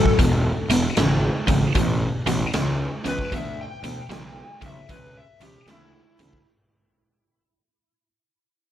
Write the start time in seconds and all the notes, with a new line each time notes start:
Already playing: A2 F#3 A4
0.06 kick, snare
0.19 E1 E2 B2, kick, closed hi-hat
0.70 E1 E2 B2, closed hi-hat
0.97 G#1 E2 C#3, snare, closed hi-hat
1.47 G#1 E2 C#3, kick, closed hi-hat
1.75 A1 E2 B2, kick, closed hi-hat
2.27 A1 E2 B2, closed hi-hat
2.54 C#2 E2 C#3, snare, closed hi-hat
3.05 C#2 E2 C#3 B4, closed hi-hat
3.19 kick, snare
3.32 D2 E2 B2 E5, kick, closed hi-hat
3.61 G5
3.83 D2 E2 B2, closed hi-hat
4.09 B1 E2 C#3, snare, closed hi-hat
4.61 B1 E2 C#3, kick, closed hi-hat
4.66 E5
4.89 C#2 E2 B2 B4, kick, closed hi-hat
5.17 E5
5.40 C#2 E2 B2 G4, closed hi-hat
5.66 D2 E2 C#3, snare, closed hi-hat
5.71 E4
6.19 D2 E2 C#3, closed hi-hat
6.33 kick, snare